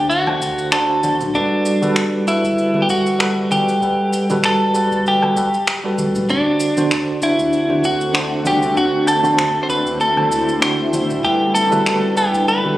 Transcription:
Already playing: D2 D3 D4 C5 F#5
0.10 F#4, shaker
0.27 D3 D4 F#4 C5, high conga, low woodblock
0.41 D2, kick, shaker
0.59 shaker
0.72 D3 D4 F#4 A4 C5, finger snap, shaker
1.03 D3 D4 F#4 C5, high conga, shaker
1.21 low conga, shaker
1.34 G1 G3 D4 F#4 A4 B4, kick, shaker
1.66 shaker
1.82 G3 F#4 A4 B4, high conga, shaker
1.96 G1, finger snap, shaker
2.27 G3 E4 F#4 A4 B4, kick, shaker
2.44 G1, kick, shaker
2.58 shaker
2.74 G3 F#4 A4 B4, high conga
2.82 G4
2.89 F#4, kick, shaker
3.06 shaker
3.19 G3 F#4 A4 B4, finger snap, shaker
3.50 D1 G3 F#4 G4 A4 B4, high conga, shaker
3.69 shaker
3.81 G1 G3 A4 B4 F#5, kick, shaker
4.13 shaker
4.29 G3 F#4 A4 B4, high conga, low conga, shaker
4.44 G1 A4, finger snap, shaker
4.74 G3 F#4 A4 B4, kick, shaker
4.91 G1, kick, shaker
5.06 G4, kick, shaker
5.22 G3 F#4 A4 B4, high conga, low woodblock
5.36 D1 G3 F#4 A4 B4, kick, shaker
5.54 shaker
5.67 finger snap, shaker
5.84 G3 F#4 A4 B4
5.98 D2, high conga, shaker
6.15 low conga, shaker
6.29 D2 D3 A3 C4 D4 F#4 C5 F#5, kick, shaker
6.60 shaker
6.76 D3 D4 F#4 C5, high conga, shaker
6.91 D2, finger snap, shaker
7.21 D3 D4 E4 F#4 C5, kick, shaker
7.38 D2, kick, shaker
7.53 shaker
7.68 D3 D4 F#4 C5, high conga
7.83 F#4, kick, shaker
8.01 shaker
8.13 D3 D4 F#4 C5, finger snap, shaker
8.44 C2 D3 D4 F#4 G4 C5, high conga, shaker
8.63 shaker
8.75 D2 D3 D4 E4 F#4 C5, kick, shaker
9.07 A4, low woodblock, shaker
9.23 D3 D4 F#4 C5, high conga, shaker
9.38 D2, finger snap, shaker
9.63 C5
9.68 D3 C4 D4 F#4 B4, kick, shaker
9.86 D2, kick, shaker
10.00 A4, shaker
10.16 D3 D4 F#4 C5, high conga, low woodblock
10.31 D2, kick, shaker
10.49 shaker
10.61 D3 D4 F#4 C5, finger snap, shaker
10.92 D3 D4 F#4 C5, high conga, shaker
11.09 low conga, shaker
11.23 G1 D3 G3 A3 B3 G4 A4 B4 F#5, kick, shaker
11.55 A4, shaker
11.71 G3 F#4 A4 B4, high conga, shaker
11.86 G1, finger snap, shaker
12.16 G3 G4 A4 B4 F#5, kick, shaker
12.33 G1, kick, shaker
12.48 B4, shaker
12.64 G3 F#4 A4 B4, high conga

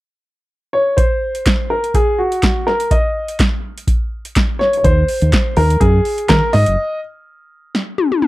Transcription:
0.73 C#5
0.97 C5, kick, closed hi-hat
1.35 closed hi-hat
1.46 kick, snare, clap, closed hi-hat
1.70 A#4
1.84 closed hi-hat
1.94 G#4, kick, closed hi-hat
2.18 F#4
2.32 closed hi-hat
2.42 kick, snare, clap, closed hi-hat
2.67 A#4, snare
2.80 closed hi-hat
2.91 D#5, kick, closed hi-hat
3.28 closed hi-hat
3.39 kick, snare, clap, closed hi-hat
3.78 closed hi-hat
3.88 kick, closed hi-hat
4.25 closed hi-hat
4.36 kick, snare, clap, closed hi-hat
4.59 C#5, snare
4.73 closed hi-hat
4.77 C#5
4.84 D#2 C5, kick, closed hi-hat
5.08 open hi-hat
5.22 D#2, closed hi-hat
5.32 kick, snare, clap, closed hi-hat
5.57 D#2 A#4, open hi-hat
5.70 closed hi-hat
5.80 F#2 G#4, kick, closed hi-hat
6.05 open hi-hat
6.18 closed hi-hat
6.29 D#3 A#4, kick, snare, clap, closed hi-hat
6.53 G#2 D#5, snare, open hi-hat
6.66 F#1, closed hi-hat
7.75 snare
7.98 high tom
8.12 high tom
8.22 mid tom

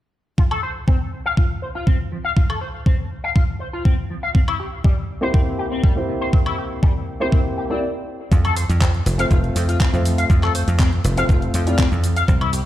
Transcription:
0.38 F4, kick
0.51 A4, high woodblock
0.63 C5
0.88 C4, kick
1.26 F5
1.37 F4, kick
1.62 C5
1.75 F4
1.87 C4, kick
2.12 F3
2.25 F5
2.37 F4, kick
2.50 A4, high woodblock
2.61 C5
2.86 C4, kick
3.24 F5
3.36 F4, kick
3.60 C5
3.73 F4
3.85 C4, kick
4.10 F3
4.23 F5
4.35 C4, kick
4.48 E4, high woodblock
4.60 G4
4.84 G3, kick
5.21 A#3 C4 E4 G4 C5
5.34 C4, kick
5.59 G4
5.72 C4
5.84 G3, kick
5.95 A#3 C4 E4 G4 C5
6.08 C3
6.21 C5
6.33 C4, kick
6.46 E4, high woodblock
6.58 G4
6.83 G3, kick
7.20 A#3 C4 E4 G4 C5
7.32 C4, kick
7.57 G4
7.70 A#3 C4 E4 G4 D5
8.32 F2 F4, kick, closed hi-hat, cabasa
8.45 A4, closed hi-hat, high woodblock
8.56 C5, open hi-hat, cabasa
8.69 F2, closed hi-hat, cabasa
8.81 C4, kick, clap, closed hi-hat, cabasa
8.94 closed hi-hat
9.06 F1, open hi-hat, cabasa
9.18 A3 C4 F4 C5 F5, closed hi-hat, cabasa
9.31 F1 F4, kick, closed hi-hat, cabasa
9.44 closed hi-hat
9.56 F2 C5, open hi-hat, cabasa
9.69 F4, closed hi-hat, cabasa
9.80 C4, kick, clap, closed hi-hat, cabasa
9.92 F2 A3 C4 F4 C5, closed hi-hat, cabasa
10.05 F3, open hi-hat, cabasa
10.18 F5, closed hi-hat, cabasa
10.30 F2 F4, kick, closed hi-hat, cabasa
10.43 A4, clap, closed hi-hat, high woodblock
10.55 C5, open hi-hat, cabasa
10.68 F2, closed hi-hat, cabasa
10.79 C4, kick, clap, closed hi-hat, cabasa
10.93 closed hi-hat
11.04 F1, open hi-hat, cabasa
11.17 A3 C4 F4 C5 F5, closed hi-hat, cabasa
11.29 F1 F4, kick, closed hi-hat, cabasa
11.42 closed hi-hat
11.54 F2 C5, open hi-hat, cabasa
11.66 A3 C4 E4 F4 D5, closed hi-hat, cabasa
11.79 C4, kick, clap, closed hi-hat, cabasa
11.92 F2, closed hi-hat, cabasa
12.04 F3, open hi-hat, cabasa
12.16 F5, closed hi-hat, cabasa
12.28 C2 C4, kick, closed hi-hat, cabasa
12.41 E4, closed hi-hat, high woodblock
12.53 G4, open hi-hat, cabasa

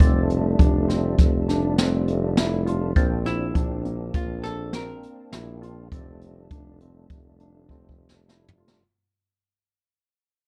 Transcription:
0.00 F1 G3 A3 C4 D4, kick, closed hi-hat
0.30 closed hi-hat
0.59 F1 D4, kick, closed hi-hat
0.88 C4, snare, closed hi-hat
1.18 F1, kick, snare, closed hi-hat
1.48 D4, snare, closed hi-hat
1.78 C4, snare, closed hi-hat
2.08 closed hi-hat
2.37 E4, snare, closed hi-hat
2.66 F4, closed hi-hat
2.96 A#1 A#3 C4 D4, kick, closed hi-hat
3.26 E4, snare, closed hi-hat
3.55 A#1 D4, kick, closed hi-hat
3.85 A#3, closed hi-hat
4.14 A#1 F4, kick, closed hi-hat
4.44 D4 A4, snare, closed hi-hat
4.73 C4 A#4, snare, closed hi-hat
5.03 closed hi-hat
5.32 A#1 E4, snare, closed hi-hat
5.62 F4, closed hi-hat
5.92 F1 G3 A3 C4 D4, kick, closed hi-hat
6.21 closed hi-hat
6.51 F1 D4, kick, closed hi-hat
6.80 C4, closed hi-hat
7.10 F1, kick, closed hi-hat
7.40 D4, closed hi-hat
7.69 C4, kick
7.89 kick
8.09 snare
8.28 E4, snare
8.48 floor tom
8.58 F4
8.68 snare

